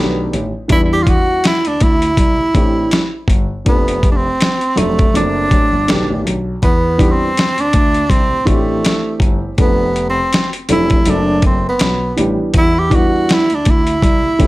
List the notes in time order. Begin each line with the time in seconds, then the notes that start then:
Already playing: B1 D#3 A3 B3 D4 G4
0.33 A1, closed hi-hat
0.68 E2 E3 G3 B3 D4 E4, kick, closed hi-hat
0.72 E4
0.93 G4
1.03 F4, kick
1.07 F#4, closed hi-hat
1.44 E4, snare, closed hi-hat
1.65 D2 D4, closed hi-hat
1.80 D2 E4, kick, closed hi-hat
2.02 closed hi-hat
2.17 C2, kick, closed hi-hat
2.40 A1
2.54 A1 E3 A3 C4 D4 G4, kick, closed hi-hat
2.91 snare, closed hi-hat
3.28 G1, kick, closed hi-hat
3.65 F1 F3 A3 B3 C4 D4 A4, kick, closed hi-hat
3.88 closed hi-hat
4.03 kick, closed hi-hat
4.12 D4
4.17 C4
4.41 snare, closed hi-hat
4.61 closed hi-hat
4.76 F1 F#3 A3 C4 D4 A4, closed hi-hat
4.99 kick, closed hi-hat
5.14 F#1 F#3 A3 C4 D4 A4, closed hi-hat
5.51 A1, kick, closed hi-hat
5.73 G1
5.88 B1 D#3 A3 B3 D4 G4, snare, closed hi-hat
6.10 A1
6.25 B1, closed hi-hat
6.63 E2 B3, kick, closed hi-hat
6.98 E3 G3 B3 D4 G4, kick, closed hi-hat
7.12 C4
7.37 snare, closed hi-hat
7.58 D2 D4, closed hi-hat
7.73 D2, kick, closed hi-hat
7.94 closed hi-hat
8.10 C2 C4, kick, closed hi-hat
8.32 A1
8.45 A1 E3 A3 C4 D4 F#4, kick, closed hi-hat
8.54 G4
8.85 snare, closed hi-hat
9.20 G1, kick, closed hi-hat
9.57 F1 F3 A3 B3 C4 D4 A4, kick, closed hi-hat
9.96 closed hi-hat
10.10 C4
10.33 snare, closed hi-hat
10.53 closed hi-hat
10.69 F1 F#3 A3 C4 D4 E4 A4, closed hi-hat
10.90 kick, closed hi-hat
11.05 F#1 F#3 A3 C4 D4 A4, closed hi-hat
11.10 D4
11.42 kick, closed hi-hat
11.46 C4
11.69 B3
11.79 B1, snare, closed hi-hat
12.17 A1 E3 G3 B3 D4 G4, closed hi-hat
12.54 E2, kick, closed hi-hat
12.58 E4
12.79 G4
12.90 E3 G3 B3 D4 E4, kick, closed hi-hat
12.96 F#4
13.29 snare, closed hi-hat
13.33 E4
13.50 D2, closed hi-hat
13.55 D4
13.65 D2, kick, closed hi-hat
13.70 E4
13.87 closed hi-hat
14.02 C2, kick, closed hi-hat
14.25 A1
14.39 A1 E3 A3 C4 D4 G4, kick, closed hi-hat